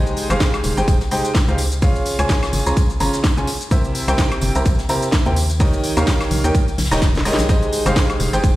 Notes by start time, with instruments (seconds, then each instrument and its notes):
Already playing: upright piano G#3 D#4 G4 G#4 C5 D#5
0.06 closed hi-hat, tambourine, shaker
0.16 closed hi-hat, open hi-hat, tambourine
0.29 fm bass G#1, upright piano G#3 D#4 G4 G#4 C5 F5, closed hi-hat, tambourine, high conga, high woodblock, shaker
0.40 kick, snare, closed hi-hat, tambourine, shaker
0.53 closed hi-hat, tambourine, high woodblock, shaker
0.63 fm bass D#1, closed hi-hat, open hi-hat, tambourine, high conga
0.77 fm bass G#1, upright piano G#3 D#4 G4 G#4 C5 G5, closed hi-hat, tambourine, shaker
0.88 fm bass D#1, kick, closed hi-hat, tambourine, shaker
1.01 snare, closed hi-hat, tambourine, shaker
1.11 upright piano G#3 D#4 G4 G#4 C5 G5, closed hi-hat, open hi-hat, tambourine, high conga
1.25 closed hi-hat, tambourine, shaker
1.35 kick, snare, closed hi-hat, tambourine, shaker
1.48 fm bass C#2, upright piano D#4 G4 G#4 C5 F5, closed hi-hat, tambourine, high conga, shaker
1.58 closed hi-hat, open hi-hat, tambourine
1.72 closed hi-hat, tambourine, shaker
1.82 upright piano C#3 C#4 F4 G#4 C#5 F5, kick, closed hi-hat, open hi-hat, tambourine, high conga, shaker
1.95 closed hi-hat, tambourine, shaker
2.06 closed hi-hat, open hi-hat, tambourine
2.19 fm bass C#2, upright piano C#3 C#4 F4 G#4 C#5 G#5, closed hi-hat, tambourine, high conga, high woodblock, shaker
2.29 kick, snare, closed hi-hat, tambourine, shaker
2.42 snare, closed hi-hat, tambourine, high woodblock, shaker
2.53 fm bass G#1, closed hi-hat, open hi-hat, tambourine, high conga
2.66 fm bass C#2, upright piano C#3 C#4 F4 G#4 C#5 A#5, closed hi-hat, shaker
2.77 kick, closed hi-hat, tambourine, shaker
2.90 closed hi-hat, tambourine, shaker
3.00 fm bass G#1, upright piano C#3 C#4 F4 G#4 C#5 A#5, closed hi-hat, open hi-hat, tambourine, high conga
3.14 snare, closed hi-hat, tambourine, shaker
3.24 kick, snare, closed hi-hat, tambourine, shaker
3.37 upright piano C#3 C#4 F4 G#4 C#5 G#5, snare, closed hi-hat, tambourine, high conga, shaker
3.47 snare, closed hi-hat, open hi-hat, tambourine
3.61 closed hi-hat, tambourine, shaker
3.71 upright piano C3 E4 G4 A#4 C5 E5, kick, closed hi-hat, tambourine, high conga, shaker
3.84 closed hi-hat, tambourine, shaker
3.95 closed hi-hat, open hi-hat, tambourine
4.08 fm bass C2, upright piano C3 E4 G4 A#4 C5 G5, closed hi-hat, tambourine, high conga, high woodblock, shaker
4.18 kick, snare, closed hi-hat, tambourine, shaker
4.31 closed hi-hat, tambourine, high woodblock, shaker
4.41 fm bass G1, closed hi-hat, open hi-hat, tambourine, high conga
4.55 fm bass C2, upright piano C3 E4 G4 A#4 C5 A#5, closed hi-hat, tambourine, shaker
4.66 fm bass A#1, kick, closed hi-hat, tambourine, shaker
4.79 snare, closed hi-hat, tambourine, shaker
4.89 upright piano C3 E4 G4 A#4 C5 A#5, closed hi-hat, open hi-hat, tambourine, high conga
5.02 closed hi-hat, tambourine, shaker
5.12 kick, snare, closed hi-hat, shaker
5.26 fm bass D#2, upright piano E4 G4 A#4 C5 G5, closed hi-hat, tambourine, high conga, shaker
5.36 closed hi-hat, open hi-hat, tambourine
5.50 closed hi-hat, tambourine, shaker
5.59 upright piano D#3 D#4 G4 A#4 C#5 D#5, kick, closed hi-hat, open hi-hat, tambourine, high conga, shaker
5.73 closed hi-hat, tambourine, shaker
5.84 closed hi-hat, open hi-hat, tambourine
5.97 fm bass D#2, upright piano D#3 D#4 G4 A#4 C#5 F5, closed hi-hat, tambourine, high conga, high woodblock, shaker
6.07 kick, snare, closed hi-hat, tambourine, shaker
6.20 snare, closed hi-hat, tambourine, high woodblock, shaker
6.31 fm bass A#1, closed hi-hat, open hi-hat, tambourine, high conga
6.44 fm bass D#2, upright piano D#3 D#4 G4 A#4 C#5 G5, closed hi-hat, tambourine, shaker
6.55 kick, closed hi-hat, tambourine, shaker
6.67 closed hi-hat, tambourine, shaker
6.78 fm bass A#1, snare, closed hi-hat, open hi-hat, tambourine, high conga
6.85 snare, closed hi-hat
6.91 fm bass D#1, upright piano D#3 D#4 G4 A#4 C#5 D#5, snare, closed hi-hat, tambourine, shaker
6.97 snare, closed hi-hat
7.01 kick, snare, closed hi-hat, tambourine, shaker
7.15 snare, closed hi-hat, tambourine, high conga, shaker
7.17 snare
7.25 upright piano G#3 D#4 G4 A#4 C#5 D#5, snare, closed hi-hat, open hi-hat, tambourine
7.33 snare
7.39 fm bass A#1, snare, closed hi-hat, tambourine, shaker
7.49 upright piano G#3 D#4 G4 G#4 C5 D#5, kick, closed hi-hat, tambourine, high conga, shaker
7.62 closed hi-hat, tambourine, shaker
7.73 closed hi-hat, open hi-hat, tambourine
7.86 fm bass G#1, upright piano G#3 D#4 G4 G#4 C5 F5, closed hi-hat, tambourine, high conga, high woodblock, shaker
7.96 kick, snare, closed hi-hat, tambourine, shaker
8.10 closed hi-hat, tambourine, high woodblock, shaker
8.20 fm bass D#1, closed hi-hat, open hi-hat, tambourine, high conga
8.33 fm bass G#1, upright piano G#3 D#4 G4 G#4 C5 G5, closed hi-hat, tambourine, shaker
8.43 fm bass D#1, kick, closed hi-hat, tambourine, shaker